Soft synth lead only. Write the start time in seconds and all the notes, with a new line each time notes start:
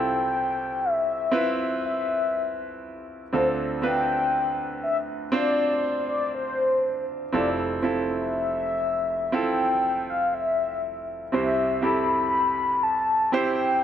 Already playing: G5
0.85 E5
1.86 E5
3.34 C5
3.84 G5
4.83 E5
5.34 D5
6.09 D5
6.35 C5
7.35 D5
7.85 E5
9.34 G5
10.10 F5
10.34 E5
11.34 E5
11.83 B5
12.83 A5
13.32 G5